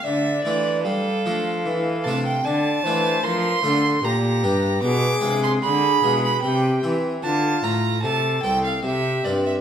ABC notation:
X:1
M:3/4
L:1/16
Q:1/4=75
K:Dm
V:1 name="Violin"
e2 d2 A6 a g | a4 c'4 b4 | d'3 c' =b3 b g2 z2 | a2 b2 a2 g f e2 d e |]
V:2 name="Flute"
d4 f8 | d2 c2 B2 A2 G4 | ^G4 G4 =G2 z2 | F4 A4 G4 |]
V:3 name="Harpsichord"
z2 [A,DF]4 [A,DF]4 [A,DF]2 | z2 [A,DF]4 [A,DF]2 z2 [DG]2 | z2 [^G,DF]4 [G,DF]2 z2 [CE]2 | z2 [A,A]2 z2 [CA]2 z2 [CB]2 |]
V:4 name="Harpsichord" clef=bass
D,2 E,2 G,2 F,2 E,2 C,2 | D,2 E,2 F,2 D,2 B,,2 G,,2 | =B,,2 C,2 D,2 B,,2 C,2 E,2 | D,2 A,,2 C,2 C,,2 C,2 G,,2 |]
V:5 name="Cello" clef=bass
D,2 E,2 G,2 F,2 E,2 C,2 | D,2 E,2 F,2 D,2 B,,2 G,,2 | =B,,2 C,2 D,2 B,,2 C,2 E,2 | D,2 A,,2 C,2 C,,2 C,2 G,,2 |]